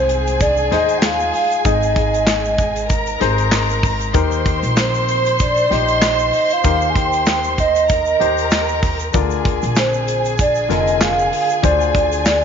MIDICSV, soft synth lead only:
0, 0, Header, 1, 2, 480
1, 0, Start_track
1, 0, Tempo, 624350
1, 1267, Time_signature, 4, 2, 24, 8
1, 9567, End_track
2, 0, Start_track
2, 0, Title_t, "Soft synth lead"
2, 0, Program_c, 0, 80
2, 0, Note_on_c, 0, 72, 95
2, 321, Note_on_c, 0, 74, 106
2, 332, Note_off_c, 0, 72, 0
2, 561, Note_on_c, 0, 75, 102
2, 572, Note_off_c, 0, 74, 0
2, 754, Note_on_c, 0, 79, 76
2, 765, Note_off_c, 0, 75, 0
2, 814, Note_on_c, 0, 77, 118
2, 825, Note_off_c, 0, 79, 0
2, 1282, Note_on_c, 0, 75, 97
2, 1294, Note_off_c, 0, 77, 0
2, 2714, Note_off_c, 0, 75, 0
2, 3690, Note_on_c, 0, 72, 86
2, 4128, Note_off_c, 0, 72, 0
2, 4159, Note_on_c, 0, 74, 89
2, 4402, Note_on_c, 0, 75, 96
2, 4413, Note_off_c, 0, 74, 0
2, 5018, Note_on_c, 0, 77, 112
2, 5030, Note_off_c, 0, 75, 0
2, 5305, Note_on_c, 0, 80, 86
2, 5316, Note_off_c, 0, 77, 0
2, 5360, Note_on_c, 0, 79, 110
2, 5371, Note_off_c, 0, 80, 0
2, 5833, Note_off_c, 0, 79, 0
2, 5843, Note_on_c, 0, 75, 99
2, 6763, Note_off_c, 0, 75, 0
2, 7516, Note_on_c, 0, 72, 91
2, 7960, Note_off_c, 0, 72, 0
2, 7999, Note_on_c, 0, 74, 105
2, 8216, Note_off_c, 0, 74, 0
2, 8236, Note_on_c, 0, 75, 101
2, 8474, Note_on_c, 0, 77, 110
2, 8486, Note_off_c, 0, 75, 0
2, 8950, Note_off_c, 0, 77, 0
2, 8955, Note_on_c, 0, 74, 97
2, 9567, Note_off_c, 0, 74, 0
2, 9567, End_track
0, 0, End_of_file